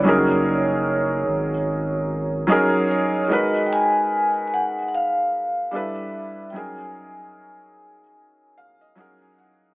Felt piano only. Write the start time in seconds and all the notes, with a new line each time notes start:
0.04 F#3 C#4 D#4 G#4
0.09 A#4
2.47 F#3 C#4 D#4 G#4
2.52 A#4
3.28 G#3 D#4 F#4 A#4
3.33 B4
5.71 G3 D4 E4 A4
5.76 B4
6.53 F#3 C#4 D#4 G#4
6.57 A#4
8.58 F5
8.81 D#5
8.95 F#3 C#4 D#4 G#4 F#5
9.00 A#4
9.22 G#5
9.39 F#5